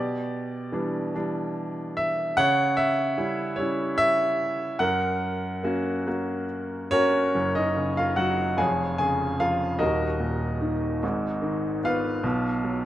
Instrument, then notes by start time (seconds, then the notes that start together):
grand piano
Already playing: B2 G4 D5
0.72 E3 G3 D4
1.15 E3 G3 D4
1.97 E5
2.37 C#3 C#5 F#5
2.77 E5
3.17 G3 C#4 E4
3.56 G3 C#4 E4 C#5
3.98 E5
4.79 F#2 A#4 F#5
5.63 A#3 C#4 F#4
6.07 A#3 C#4 F#4
6.91 C#4 F#4 A#4 C#5
7.35 F#1 F#2
7.55 D#4 D#5
7.76 C#3
7.97 F4 F5
8.16 F#3 F#4 F#5
8.57 F1 F2 G#4 C#5 F5 G#5
8.98 C#3 G#4 G#5
9.40 F3 F4 F5
9.79 D#1 D#2 D#4 F#4 A#4 D#5
10.20 A#2
10.61 D#3
11.03 G#1 G#2
11.42 D#3
11.83 B3 F4 B4 F5
12.23 B1 B2
12.64 F#3